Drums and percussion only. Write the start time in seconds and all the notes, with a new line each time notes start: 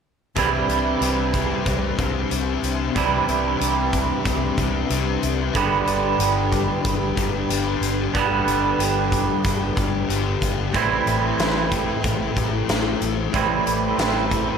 0.36 kick, closed hi-hat
0.69 closed hi-hat
1.02 closed hi-hat
1.34 kick, closed hi-hat
1.66 kick, closed hi-hat
1.99 kick, closed hi-hat
2.31 closed hi-hat
2.64 closed hi-hat
2.96 kick, closed hi-hat
3.28 closed hi-hat
3.61 closed hi-hat
3.93 kick, closed hi-hat
4.25 kick, closed hi-hat
4.58 kick, closed hi-hat
4.90 closed hi-hat
5.23 closed hi-hat
5.55 kick, closed hi-hat
5.87 closed hi-hat
6.20 closed hi-hat
6.52 kick, closed hi-hat
6.85 kick, closed hi-hat
7.17 kick, closed hi-hat
7.50 closed hi-hat
7.83 closed hi-hat
8.15 kick, closed hi-hat
8.48 closed hi-hat
8.80 closed hi-hat
9.12 kick, closed hi-hat
9.45 kick, closed hi-hat
9.77 kick, closed hi-hat
10.10 closed hi-hat
10.42 kick, closed hi-hat
10.74 kick, closed hi-hat
11.07 closed hi-hat
11.39 snare, closed hi-hat
11.72 kick, closed hi-hat
12.04 kick, closed hi-hat
12.37 kick, closed hi-hat
12.69 snare, closed hi-hat
13.02 closed hi-hat
13.34 kick, closed hi-hat
13.67 closed hi-hat
13.99 snare, closed hi-hat
14.31 kick, closed hi-hat